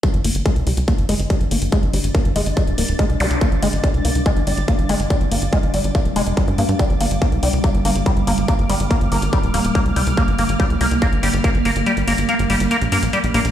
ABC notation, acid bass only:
X:1
M:4/4
L:1/8
Q:1/4=142
K:Gphr
V:1 name="Acid bass"
G, B, A, G, B, A, G, B, | A, G, B, A, G, B, A, G, | B, A, G, B, A, G, B, A, | G, B, A, G, B, A, G, B, |
G, B, B, G, B, B, G, B, | B, G, B, B, G, B, B, G, | B, B, G, B, B, G, B, B, | G, B, B, G, B, B, G, B, |]